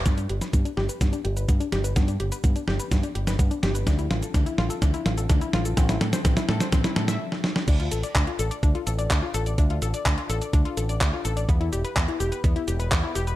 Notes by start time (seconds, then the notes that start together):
0.06 G2 B3, kick, snare, closed hi-hat, cabasa
0.18 D4, closed hi-hat, cabasa
0.29 G1 G4, closed hi-hat
0.41 B4, snare, closed hi-hat, cabasa
0.53 G2 B3, kick, closed hi-hat, cabasa
0.65 D4, closed hi-hat, cabasa
0.77 G1 G4, snare
0.89 B4, closed hi-hat, cabasa
1.01 G2 B3, kick, snare, closed hi-hat, cabasa
1.13 D4, closed hi-hat, cabasa
1.25 G1 G4, closed hi-hat
1.37 B4, closed hi-hat, cabasa
1.49 G2 B3, kick, closed hi-hat, cabasa
1.60 D4, closed hi-hat, cabasa
1.72 G1 G4, snare, closed hi-hat
1.84 B4, closed hi-hat, cabasa
1.96 G2 B3, kick, snare, closed hi-hat, cabasa
2.08 D4, closed hi-hat, cabasa
2.20 G1 G4, closed hi-hat
2.32 B4, closed hi-hat, cabasa
2.44 G2 B3, kick, closed hi-hat, cabasa
2.56 D4, closed hi-hat, cabasa
2.68 G1 G4, snare
2.79 B4, closed hi-hat, cabasa
2.91 G2 B3, kick, snare, closed hi-hat, cabasa
3.03 D4, closed hi-hat, cabasa
3.15 G1 G4, closed hi-hat
3.27 B4, snare, closed hi-hat, cabasa
3.39 G2 B3, kick, closed hi-hat, cabasa
3.51 D4, closed hi-hat, cabasa
3.63 G1 G4, snare, closed hi-hat
3.75 B4, closed hi-hat, cabasa
3.87 D2 D4, kick, snare, closed hi-hat, cabasa
3.99 E4, closed hi-hat, cabasa
4.10 A1 F4, snare, closed hi-hat
4.22 A4, closed hi-hat, cabasa
4.34 D2 D4, kick, snare, closed hi-hat, cabasa
4.46 E4, closed hi-hat, cabasa
4.58 A1 F4, snare
4.70 A4, closed hi-hat, cabasa
4.82 D2 D4, kick, snare, closed hi-hat, cabasa
4.94 E4, closed hi-hat, cabasa
5.06 A1 F4, snare, closed hi-hat
5.18 A4, closed hi-hat, cabasa
5.29 D2 D4, kick, snare, closed hi-hat, cabasa
5.41 E4, closed hi-hat, cabasa
5.53 A1 F4, snare, closed hi-hat
5.65 A4, closed hi-hat, cabasa
5.77 A1 C4, kick, snare, closed hi-hat, cabasa
5.89 E4, snare, closed hi-hat, cabasa
6.01 A2 A4, snare, closed hi-hat
6.13 C5, snare, closed hi-hat, cabasa
6.25 A1 C4, kick, snare, closed hi-hat, cabasa
6.37 E4, snare, closed hi-hat, cabasa
6.49 A2 A4, snare
6.60 C5, snare, closed hi-hat, cabasa
6.72 A1 C4, kick, snare, closed hi-hat, cabasa
6.84 E4, snare, closed hi-hat, cabasa
6.96 A2 A4, snare, closed hi-hat
7.08 E5, snare, closed hi-hat, cabasa
7.32 snare
7.44 snare
7.56 snare
7.68 D2 D4, kick, closed hi-hat, crash, cabasa
7.80 F4, closed hi-hat
7.91 A1 A4, closed hi-hat, cabasa
8.03 D5, closed hi-hat, cabasa
8.15 D2 D4, kick, clap, closed hi-hat, cabasa
8.27 F4, closed hi-hat
8.39 A1 A4, closed hi-hat, cabasa
8.51 D5, closed hi-hat, cabasa
8.63 D2 D4, kick, closed hi-hat, cabasa
8.75 F4, closed hi-hat
8.87 A1 A4, closed hi-hat, cabasa
8.98 D5, closed hi-hat, cabasa
9.10 D2 D4, kick, clap, closed hi-hat, cabasa
9.22 F4
9.34 A1 A4, closed hi-hat, cabasa
9.46 D5, closed hi-hat, cabasa
9.58 D2 D4, kick, closed hi-hat, cabasa
9.70 F4, closed hi-hat
9.82 A1 A4, closed hi-hat, cabasa
9.94 D5, closed hi-hat, cabasa
10.06 D2 D4, kick, clap, closed hi-hat, cabasa
10.18 F4, closed hi-hat
10.29 A1 A4, closed hi-hat, cabasa
10.42 D5, closed hi-hat, cabasa
10.53 D2 D4, kick, closed hi-hat, cabasa
10.65 F4, closed hi-hat
10.77 A1 A4, closed hi-hat, cabasa
10.89 D5, closed hi-hat, cabasa
11.01 D2 D4, kick, clap, closed hi-hat, cabasa
11.13 F4
11.25 A1 A4, closed hi-hat, cabasa
11.37 D5, closed hi-hat, cabasa
11.49 E2 B3, kick, closed hi-hat, cabasa
11.61 E4, closed hi-hat
11.72 E1 G4, closed hi-hat, cabasa
11.85 B4, closed hi-hat, cabasa
11.96 E2 B3, kick, clap, closed hi-hat, cabasa
12.08 E4, closed hi-hat
12.20 E1 G4, closed hi-hat, cabasa
12.32 B4, closed hi-hat, cabasa
12.44 E2 B3, kick, closed hi-hat, cabasa
12.56 E4, closed hi-hat
12.68 E1 G4, closed hi-hat, cabasa
12.80 B4, closed hi-hat, cabasa
12.91 E2 B3, kick, clap, closed hi-hat, cabasa
13.03 E4
13.15 E1 G4, closed hi-hat, cabasa
13.27 B4, closed hi-hat, cabasa